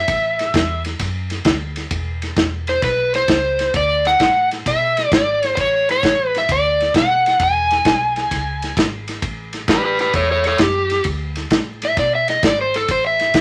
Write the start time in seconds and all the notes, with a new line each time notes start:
Already playing: E5
0.08 A1, kick, ride
0.39 snare, ride
0.54 E2, kick, snare, ride
0.85 snare, ride
0.99 F#2, kick, snare, ride
1.30 snare, ride
1.45 D2, kick, snare, ride
1.76 snare, ride
1.91 E1, kick, ride
2.22 snare, ride
2.37 E1, kick, snare, ride
2.67 C5, snare, ride
2.82 B1 B4, kick, snare, ride
3.14 C5, snare, ride
3.28 C#2, kick, snare, ride
3.59 snare, ride
3.74 D2 D5, kick, ride
4.05 F#5, snare, ride
4.20 A2, kick, snare, ride
4.51 snare, ride
4.66 B2 E5, kick, snare, ride
4.97 snare, ride
5.12 G#1 D5, kick, snare, ride
5.43 snare, ride
5.55 A1 C5, kick, snare, ride
5.61 C#5
5.89 C#5, snare, ride
6.03 A1, kick, snare, ride
6.35 E5, snare, ride
6.49 D2 D5, kick, ride
6.80 snare, ride
6.94 B2 F#5, kick, snare, ride
7.26 snare, ride
7.40 E1 G#5, kick, ride
7.71 snare, ride
7.85 B1, kick, snare, ride
8.16 snare, ride
8.31 C#2, kick, snare, ride
8.62 snare, ride
8.77 G#1, kick, snare, ride
9.08 snare, ride
9.22 A1, kick, ride
9.53 snare, ride
9.68 A1 G4 B4, kick, snare, ride
9.85 G4 B4
9.99 G4 B4, snare, ride
10.13 E2 A4 C#5, kick, ride
10.31 A4 C#5
10.44 A4 C#5, snare, ride
10.58 F#2 G4, kick, snare, ride
10.90 snare, ride
11.04 D2, kick, ride
11.36 snare, ride
11.50 A2, kick, snare, ride
11.82 E5, snare, ride
11.97 B2 D5, kick, snare, ride
12.15 E5
12.28 D#5, snare, ride
12.43 G#1 D5, kick, snare, ride
12.61 C5
12.74 A4, snare, ride
12.88 A1 C5, kick, ride
13.07 E5
13.19 snare, ride
13.34 A1, kick, snare, ride